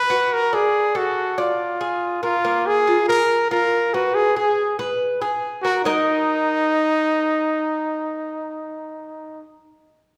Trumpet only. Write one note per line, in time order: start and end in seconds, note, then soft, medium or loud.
0.00 0.35 B4 loud
0.33 0.56 A#4 loud
0.54 0.98 G#4 loud
0.97 1.41 F#4 medium
1.40 2.22 F4 medium
2.23 2.68 F4 loud
2.67 3.08 G#4 loud
3.08 3.48 A#4 loud
3.51 3.96 A#4 loud
3.94 4.16 F#4 loud
4.15 4.36 G#4 loud
4.37 4.76 G#4 medium
5.62 5.83 F#4 loud
5.84 9.42 D#4 loud